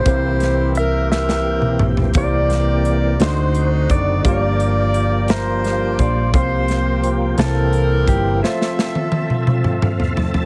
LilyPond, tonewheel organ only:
\new Staff \with { instrumentName = "Tonewheel organ" } { \time 6/8 \key c \mixolydian \tempo 4. = 57 << { r2. | r2. | r2. | r2. |
r2 f''8 a''8 | } \\ { <e bes c' g'>2.~ | <e bes c' g'>4. <d c' ees' fis'>4. | <f bes d' g'>2. | <f bes c' f' g'>4. <e bes c' g'>4. |
<f c' aes' a' e''>2. | } >> }